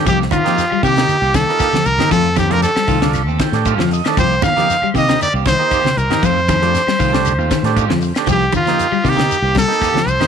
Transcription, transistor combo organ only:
0.44 A#3 D#4 G4
0.97 A#3 D#4 G4
1.49 A#3 D#4 F4
1.99 A#3 D#4 G4
2.50 A3 D4 G4
3.01 A3 D4 F4
3.40 G5
3.54 A3 D4 G4
3.67 F5
3.93 D#5
4.07 A3 D4 A4
4.56 A#3 D#4 G4
5.08 A#3 D#4 G4
5.59 A#3 D#4 G4
6.10 A#3 D#4 G4
6.62 A3 D4 G4
7.13 A3 D4 G4
7.65 A3 D4 G4
8.18 A3 D4 G4
8.68 A#3 D#4 G4
9.16 A#3 D#4 G4
9.68 A#3 D#4 G4
10.20 A#3 D#4 G4

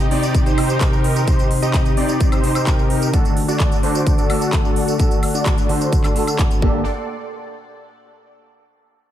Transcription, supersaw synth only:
0.11 D#4 G4 D5
0.46 D#4 G4 C5
0.81 D#4 G4 A#4
1.28 D#4 G4 C5
1.62 D#4 G4 D#5
1.97 D#4 G4 D5
2.32 D#4 G4 C5
2.67 D#4 G4 A#4
3.13 D4 F#4 A4
3.48 D4 F#4 D5
3.83 D4 F#4 C5
4.18 D4 F#4 A4
4.53 D4 A4
4.99 D4 F#4 A4
5.34 D4 F#4 D5
5.69 D4 F#4 C5
6.04 D4 F#4 A4
6.27 D4 F#4 A4
6.62 A#3 D4 G4 A4 D5

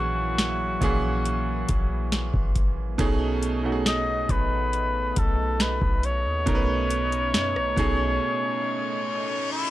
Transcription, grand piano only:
Already playing: A#2 E3 C#4 G#4
0.81 A#2 E3 C#4 G#4
2.98 B2 A3 C#4 D#4 G#4
3.63 B2 A3 C#4 D#4 F#4
3.72 G#4
6.46 B2 A3 C#4 D#4 A#4
6.55 B4
7.76 B2 A3 C#4 D#4 G#4

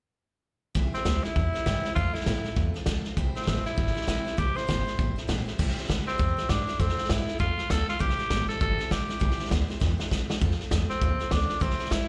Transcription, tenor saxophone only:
0.94 C4
1.24 E4
1.95 F4
2.14 E4
3.36 C4
3.66 E4
4.38 G4
4.57 C5
6.07 C4
6.49 D4
6.80 C4
7.11 E4
7.40 F4
7.70 A4
7.89 F4
8.00 G4
8.49 A4
8.61 A4
8.92 G4
10.90 C4
11.32 D4
11.61 C4
11.93 E4

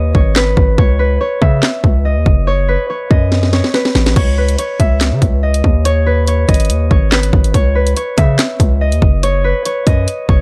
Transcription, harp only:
Already playing: B4 C#5 D#5
0.15 C#5
0.36 B4
0.78 C#5
0.99 B4
1.21 C#5
1.42 E5
2.05 D#5
2.47 C#5
2.68 B4
2.90 C#5
3.11 D#5
3.53 C#5
3.74 B4
4.16 C#5
4.38 B4
4.59 C#5
4.80 E5
5.43 D#5
5.85 C#5
6.06 B4
6.28 C#5
6.48 D#5
6.91 C#5
7.12 B4
7.54 C#5
7.75 B4
7.97 C#5
8.18 E5
8.81 D#5
9.23 C#5
9.44 B4
9.66 C#5
9.87 D#5
10.29 C#5

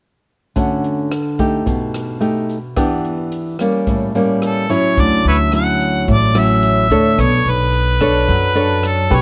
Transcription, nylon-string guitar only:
0.56 D3 A3 C#4 F#4
1.39 A3 D#4 G4
1.66 B2
2.20 A3 D#4 G4
2.76 E3 B3 D4 G4
3.60 G3 A#3 C#4
3.87 A2
4.15 G3 A#3 C#4
4.69 F#3 C#4 E4
4.98 D3
5.53 F#3 C#4 E4
6.08 A2
6.35 F#3 C#4 E4
6.91 D4 A4 C#5
7.18 B3
8.01 D4 A4 C#5
8.28 F#3
8.55 D4 A4 C#5
9.10 C#4 G4 B4

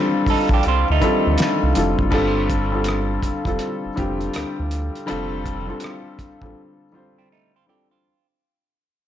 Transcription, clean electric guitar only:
0.30 D#4 A4
0.54 D4 G4
0.68 C4 F4
0.92 A3 D#4
7.18 G3 C4
7.32 A3 D#4
7.56 C4 F4
7.69 D4 G4
7.91 C4 F4

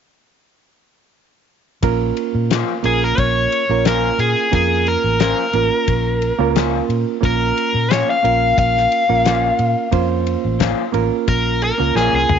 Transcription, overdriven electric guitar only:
2.85 G#4
3.04 A#4
3.19 C#5
3.87 A#4
4.20 G#4
4.55 G#4
4.88 A#4
5.21 A#4
7.25 A#4
7.92 C#5
8.10 F5
8.59 F5
11.29 A#4
11.64 A#4
11.96 G#4
12.16 G#4

